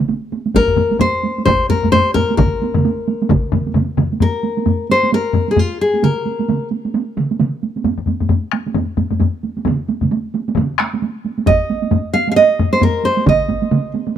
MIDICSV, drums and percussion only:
0, 0, Header, 1, 2, 480
1, 0, Start_track
1, 0, Tempo, 456274
1, 587, Time_signature, 4, 2, 24, 8
1, 7784, Tempo, 451467
1, 14989, End_track
2, 0, Start_track
2, 0, Title_t, "Taiko and cinematic ensemble drums"
2, 5, Note_on_c, 9, 47, 68
2, 93, Note_on_c, 9, 48, 56
2, 110, Note_off_c, 9, 47, 0
2, 198, Note_off_c, 9, 48, 0
2, 338, Note_on_c, 9, 48, 50
2, 443, Note_off_c, 9, 48, 0
2, 481, Note_on_c, 9, 48, 45
2, 576, Note_off_c, 9, 48, 0
2, 576, Note_on_c, 9, 45, 73
2, 576, Note_on_c, 9, 48, 62
2, 588, Note_on_c, 9, 41, 93
2, 681, Note_off_c, 9, 45, 0
2, 681, Note_off_c, 9, 48, 0
2, 694, Note_off_c, 9, 41, 0
2, 716, Note_on_c, 9, 45, 66
2, 811, Note_off_c, 9, 45, 0
2, 811, Note_on_c, 9, 45, 95
2, 814, Note_on_c, 9, 48, 52
2, 916, Note_off_c, 9, 45, 0
2, 919, Note_off_c, 9, 48, 0
2, 958, Note_on_c, 9, 48, 48
2, 1047, Note_on_c, 9, 45, 99
2, 1055, Note_off_c, 9, 48, 0
2, 1055, Note_on_c, 9, 48, 64
2, 1152, Note_off_c, 9, 45, 0
2, 1161, Note_off_c, 9, 48, 0
2, 1307, Note_on_c, 9, 48, 53
2, 1413, Note_off_c, 9, 48, 0
2, 1455, Note_on_c, 9, 48, 51
2, 1538, Note_on_c, 9, 45, 96
2, 1550, Note_on_c, 9, 41, 100
2, 1554, Note_off_c, 9, 48, 0
2, 1554, Note_on_c, 9, 48, 65
2, 1643, Note_off_c, 9, 45, 0
2, 1655, Note_off_c, 9, 41, 0
2, 1659, Note_off_c, 9, 48, 0
2, 1781, Note_on_c, 9, 45, 73
2, 1790, Note_on_c, 9, 48, 48
2, 1886, Note_off_c, 9, 45, 0
2, 1895, Note_off_c, 9, 48, 0
2, 1929, Note_on_c, 9, 45, 68
2, 1942, Note_on_c, 9, 48, 53
2, 2020, Note_off_c, 9, 45, 0
2, 2020, Note_on_c, 9, 45, 95
2, 2036, Note_off_c, 9, 48, 0
2, 2036, Note_on_c, 9, 48, 67
2, 2125, Note_off_c, 9, 45, 0
2, 2141, Note_off_c, 9, 48, 0
2, 2264, Note_on_c, 9, 45, 101
2, 2277, Note_on_c, 9, 48, 55
2, 2369, Note_off_c, 9, 45, 0
2, 2382, Note_off_c, 9, 48, 0
2, 2424, Note_on_c, 9, 48, 58
2, 2504, Note_on_c, 9, 45, 101
2, 2507, Note_on_c, 9, 41, 123
2, 2511, Note_on_c, 9, 47, 101
2, 2514, Note_off_c, 9, 48, 0
2, 2514, Note_on_c, 9, 48, 76
2, 2610, Note_off_c, 9, 45, 0
2, 2612, Note_off_c, 9, 41, 0
2, 2616, Note_off_c, 9, 47, 0
2, 2619, Note_off_c, 9, 48, 0
2, 2754, Note_on_c, 9, 48, 64
2, 2859, Note_off_c, 9, 48, 0
2, 2887, Note_on_c, 9, 45, 94
2, 2890, Note_on_c, 9, 47, 101
2, 2904, Note_on_c, 9, 48, 57
2, 2992, Note_off_c, 9, 45, 0
2, 2995, Note_off_c, 9, 47, 0
2, 2999, Note_off_c, 9, 48, 0
2, 2999, Note_on_c, 9, 48, 74
2, 3104, Note_off_c, 9, 48, 0
2, 3236, Note_on_c, 9, 48, 56
2, 3341, Note_off_c, 9, 48, 0
2, 3385, Note_on_c, 9, 48, 56
2, 3464, Note_on_c, 9, 45, 97
2, 3469, Note_on_c, 9, 41, 103
2, 3469, Note_on_c, 9, 47, 104
2, 3478, Note_off_c, 9, 48, 0
2, 3478, Note_on_c, 9, 48, 71
2, 3569, Note_off_c, 9, 45, 0
2, 3574, Note_off_c, 9, 41, 0
2, 3574, Note_off_c, 9, 47, 0
2, 3583, Note_off_c, 9, 48, 0
2, 3703, Note_on_c, 9, 45, 113
2, 3711, Note_on_c, 9, 47, 90
2, 3718, Note_on_c, 9, 48, 49
2, 3808, Note_off_c, 9, 45, 0
2, 3816, Note_off_c, 9, 47, 0
2, 3823, Note_off_c, 9, 48, 0
2, 3863, Note_on_c, 9, 48, 51
2, 3940, Note_on_c, 9, 45, 90
2, 3948, Note_off_c, 9, 48, 0
2, 3948, Note_on_c, 9, 48, 66
2, 3949, Note_on_c, 9, 47, 90
2, 4045, Note_off_c, 9, 45, 0
2, 4053, Note_off_c, 9, 48, 0
2, 4054, Note_off_c, 9, 47, 0
2, 4183, Note_on_c, 9, 47, 91
2, 4185, Note_on_c, 9, 45, 97
2, 4193, Note_on_c, 9, 48, 48
2, 4289, Note_off_c, 9, 47, 0
2, 4290, Note_off_c, 9, 45, 0
2, 4298, Note_off_c, 9, 48, 0
2, 4337, Note_on_c, 9, 48, 45
2, 4422, Note_on_c, 9, 45, 88
2, 4428, Note_off_c, 9, 48, 0
2, 4428, Note_on_c, 9, 48, 60
2, 4527, Note_off_c, 9, 45, 0
2, 4533, Note_off_c, 9, 48, 0
2, 4661, Note_on_c, 9, 48, 46
2, 4766, Note_off_c, 9, 48, 0
2, 4808, Note_on_c, 9, 48, 49
2, 4901, Note_on_c, 9, 45, 85
2, 4903, Note_off_c, 9, 48, 0
2, 4903, Note_on_c, 9, 48, 60
2, 5007, Note_off_c, 9, 45, 0
2, 5008, Note_off_c, 9, 48, 0
2, 5150, Note_on_c, 9, 48, 47
2, 5256, Note_off_c, 9, 48, 0
2, 5292, Note_on_c, 9, 48, 48
2, 5391, Note_off_c, 9, 48, 0
2, 5391, Note_on_c, 9, 48, 56
2, 5496, Note_off_c, 9, 48, 0
2, 5619, Note_on_c, 9, 45, 94
2, 5626, Note_on_c, 9, 48, 47
2, 5724, Note_off_c, 9, 45, 0
2, 5731, Note_off_c, 9, 48, 0
2, 5767, Note_on_c, 9, 48, 44
2, 5854, Note_on_c, 9, 45, 90
2, 5859, Note_off_c, 9, 48, 0
2, 5859, Note_on_c, 9, 48, 52
2, 5959, Note_off_c, 9, 45, 0
2, 5965, Note_off_c, 9, 48, 0
2, 6245, Note_on_c, 9, 48, 47
2, 6339, Note_off_c, 9, 48, 0
2, 6339, Note_on_c, 9, 48, 55
2, 6347, Note_on_c, 9, 47, 90
2, 6444, Note_off_c, 9, 48, 0
2, 6452, Note_off_c, 9, 47, 0
2, 6581, Note_on_c, 9, 48, 48
2, 6686, Note_off_c, 9, 48, 0
2, 6726, Note_on_c, 9, 48, 47
2, 6821, Note_off_c, 9, 48, 0
2, 6821, Note_on_c, 9, 48, 64
2, 6830, Note_on_c, 9, 47, 81
2, 6927, Note_off_c, 9, 48, 0
2, 6935, Note_off_c, 9, 47, 0
2, 7062, Note_on_c, 9, 48, 50
2, 7167, Note_off_c, 9, 48, 0
2, 7205, Note_on_c, 9, 48, 50
2, 7301, Note_off_c, 9, 48, 0
2, 7301, Note_on_c, 9, 48, 64
2, 7406, Note_off_c, 9, 48, 0
2, 7541, Note_on_c, 9, 48, 46
2, 7544, Note_on_c, 9, 47, 91
2, 7647, Note_off_c, 9, 48, 0
2, 7649, Note_off_c, 9, 47, 0
2, 7690, Note_on_c, 9, 48, 48
2, 7779, Note_off_c, 9, 48, 0
2, 7779, Note_on_c, 9, 48, 58
2, 7790, Note_on_c, 9, 47, 90
2, 7886, Note_off_c, 9, 48, 0
2, 7897, Note_off_c, 9, 47, 0
2, 8027, Note_on_c, 9, 48, 41
2, 8134, Note_off_c, 9, 48, 0
2, 8168, Note_on_c, 9, 48, 46
2, 8258, Note_off_c, 9, 48, 0
2, 8258, Note_on_c, 9, 45, 69
2, 8258, Note_on_c, 9, 48, 62
2, 8365, Note_off_c, 9, 45, 0
2, 8365, Note_off_c, 9, 48, 0
2, 8398, Note_on_c, 9, 45, 64
2, 8500, Note_off_c, 9, 45, 0
2, 8500, Note_on_c, 9, 45, 60
2, 8503, Note_on_c, 9, 48, 50
2, 8606, Note_off_c, 9, 45, 0
2, 8609, Note_off_c, 9, 48, 0
2, 8640, Note_on_c, 9, 45, 61
2, 8641, Note_on_c, 9, 48, 51
2, 8732, Note_off_c, 9, 45, 0
2, 8732, Note_on_c, 9, 45, 89
2, 8741, Note_off_c, 9, 48, 0
2, 8741, Note_on_c, 9, 48, 64
2, 8839, Note_off_c, 9, 45, 0
2, 8847, Note_off_c, 9, 48, 0
2, 8970, Note_on_c, 9, 37, 68
2, 8988, Note_on_c, 9, 48, 49
2, 9076, Note_off_c, 9, 37, 0
2, 9094, Note_off_c, 9, 48, 0
2, 9129, Note_on_c, 9, 48, 54
2, 9215, Note_on_c, 9, 45, 98
2, 9224, Note_off_c, 9, 48, 0
2, 9224, Note_on_c, 9, 48, 66
2, 9321, Note_off_c, 9, 45, 0
2, 9330, Note_off_c, 9, 48, 0
2, 9455, Note_on_c, 9, 45, 76
2, 9459, Note_on_c, 9, 48, 52
2, 9562, Note_off_c, 9, 45, 0
2, 9566, Note_off_c, 9, 48, 0
2, 9598, Note_on_c, 9, 45, 71
2, 9605, Note_on_c, 9, 48, 49
2, 9700, Note_off_c, 9, 48, 0
2, 9700, Note_on_c, 9, 48, 62
2, 9701, Note_off_c, 9, 45, 0
2, 9701, Note_on_c, 9, 45, 90
2, 9807, Note_off_c, 9, 45, 0
2, 9807, Note_off_c, 9, 48, 0
2, 9945, Note_on_c, 9, 48, 44
2, 10051, Note_off_c, 9, 48, 0
2, 10089, Note_on_c, 9, 48, 49
2, 10176, Note_on_c, 9, 45, 95
2, 10180, Note_off_c, 9, 48, 0
2, 10180, Note_on_c, 9, 48, 67
2, 10201, Note_on_c, 9, 47, 97
2, 10283, Note_off_c, 9, 45, 0
2, 10286, Note_off_c, 9, 48, 0
2, 10308, Note_off_c, 9, 47, 0
2, 10426, Note_on_c, 9, 48, 58
2, 10533, Note_off_c, 9, 48, 0
2, 10562, Note_on_c, 9, 45, 62
2, 10575, Note_on_c, 9, 48, 55
2, 10582, Note_on_c, 9, 47, 64
2, 10668, Note_off_c, 9, 45, 0
2, 10671, Note_off_c, 9, 48, 0
2, 10671, Note_on_c, 9, 48, 70
2, 10688, Note_off_c, 9, 47, 0
2, 10777, Note_off_c, 9, 48, 0
2, 10910, Note_on_c, 9, 48, 55
2, 11016, Note_off_c, 9, 48, 0
2, 11060, Note_on_c, 9, 48, 56
2, 11139, Note_on_c, 9, 45, 100
2, 11160, Note_on_c, 9, 47, 103
2, 11161, Note_off_c, 9, 48, 0
2, 11161, Note_on_c, 9, 48, 73
2, 11245, Note_off_c, 9, 45, 0
2, 11266, Note_off_c, 9, 47, 0
2, 11267, Note_off_c, 9, 48, 0
2, 11383, Note_on_c, 9, 37, 76
2, 11393, Note_off_c, 9, 37, 0
2, 11393, Note_on_c, 9, 37, 67
2, 11402, Note_on_c, 9, 48, 48
2, 11499, Note_off_c, 9, 37, 0
2, 11508, Note_off_c, 9, 48, 0
2, 11543, Note_on_c, 9, 48, 51
2, 11636, Note_off_c, 9, 48, 0
2, 11636, Note_on_c, 9, 48, 62
2, 11743, Note_off_c, 9, 48, 0
2, 11873, Note_on_c, 9, 48, 44
2, 11979, Note_off_c, 9, 48, 0
2, 12013, Note_on_c, 9, 48, 50
2, 12105, Note_off_c, 9, 48, 0
2, 12105, Note_on_c, 9, 45, 98
2, 12105, Note_on_c, 9, 48, 63
2, 12117, Note_on_c, 9, 41, 88
2, 12211, Note_off_c, 9, 45, 0
2, 12212, Note_off_c, 9, 48, 0
2, 12223, Note_off_c, 9, 41, 0
2, 12352, Note_on_c, 9, 48, 55
2, 12459, Note_off_c, 9, 48, 0
2, 12488, Note_on_c, 9, 48, 55
2, 12579, Note_off_c, 9, 48, 0
2, 12579, Note_on_c, 9, 48, 72
2, 12584, Note_on_c, 9, 45, 91
2, 12685, Note_off_c, 9, 48, 0
2, 12690, Note_off_c, 9, 45, 0
2, 12822, Note_on_c, 9, 48, 55
2, 12928, Note_off_c, 9, 48, 0
2, 12969, Note_on_c, 9, 48, 57
2, 13062, Note_off_c, 9, 48, 0
2, 13062, Note_on_c, 9, 48, 69
2, 13168, Note_off_c, 9, 48, 0
2, 13304, Note_on_c, 9, 48, 50
2, 13308, Note_on_c, 9, 45, 107
2, 13410, Note_off_c, 9, 48, 0
2, 13414, Note_off_c, 9, 45, 0
2, 13446, Note_on_c, 9, 48, 53
2, 13543, Note_off_c, 9, 48, 0
2, 13543, Note_on_c, 9, 45, 94
2, 13543, Note_on_c, 9, 48, 69
2, 13649, Note_off_c, 9, 48, 0
2, 13650, Note_off_c, 9, 45, 0
2, 13782, Note_on_c, 9, 48, 48
2, 13888, Note_off_c, 9, 48, 0
2, 13923, Note_on_c, 9, 48, 54
2, 14017, Note_off_c, 9, 48, 0
2, 14017, Note_on_c, 9, 48, 71
2, 14023, Note_on_c, 9, 41, 104
2, 14023, Note_on_c, 9, 47, 105
2, 14123, Note_off_c, 9, 48, 0
2, 14129, Note_off_c, 9, 41, 0
2, 14130, Note_off_c, 9, 47, 0
2, 14257, Note_on_c, 9, 48, 58
2, 14259, Note_on_c, 9, 41, 72
2, 14363, Note_off_c, 9, 48, 0
2, 14365, Note_off_c, 9, 41, 0
2, 14397, Note_on_c, 9, 48, 59
2, 14497, Note_off_c, 9, 48, 0
2, 14497, Note_on_c, 9, 48, 77
2, 14498, Note_on_c, 9, 47, 95
2, 14604, Note_off_c, 9, 47, 0
2, 14604, Note_off_c, 9, 48, 0
2, 14736, Note_on_c, 9, 48, 56
2, 14843, Note_off_c, 9, 48, 0
2, 14875, Note_on_c, 9, 48, 59
2, 14982, Note_off_c, 9, 48, 0
2, 14989, End_track
0, 0, End_of_file